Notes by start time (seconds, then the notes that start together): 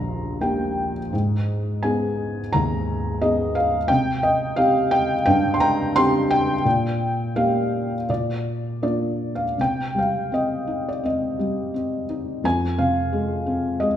Already playing: A#1 D#2 A#3 D#4 G4 A#5 C6
0.41 A#3 D#4 G4 G5
1.13 G#2
1.83 B3 D#4 G#4 G#5
2.53 D#2 A#5
3.21 B3 D#4 G#4 D#5
3.55 F5
3.88 C3 G5
4.23 D#5
4.56 C4 D#4 G4 F5
4.91 G5
5.26 G2 G5
5.54 C6
5.60 A#5
5.96 C4 D#4 G4 C6
6.31 G5
6.65 A#2
7.36 A#3 D#4 G4 F5
8.09 A#2 D5
8.82 A#3 D4 F4 D5
9.35 F5
9.58 C3 G5
9.95 G3 F5
10.32 C4 D#5
10.67 D#4
10.89 D5
11.03 C4 D#5
11.39 G3
11.74 C4
12.10 D#4
12.44 F2 G#5
12.78 C3 F5
13.13 G#3
13.46 C4
13.80 G#3 D#5